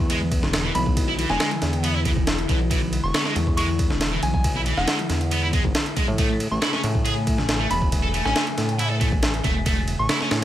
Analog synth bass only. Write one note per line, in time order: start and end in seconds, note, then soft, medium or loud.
0.00 0.44 E2 medium
0.43 0.72 E1 loud
0.75 1.26 B1 loud
1.30 1.38 E1 loud
1.62 2.18 E2 medium
2.17 2.46 E1 loud
2.49 3.00 B1 loud
3.04 3.12 E1 loud
3.36 3.92 E2 medium
3.91 4.20 E1 loud
4.23 4.74 B1 loud
4.77 4.86 E1 loud
5.10 5.61 E2 medium
5.64 5.73 G#1 medium
6.08 6.48 A2 medium
6.51 6.60 A1 loud
6.84 7.40 A2 medium
7.38 7.67 A1 loud
7.71 8.22 E1 loud
8.25 8.34 A1 loud
8.58 9.14 A2 medium
9.12 9.41 A1 loud
9.45 9.96 E1 loud
9.99 10.08 A1 loud
10.31 10.44 A2 medium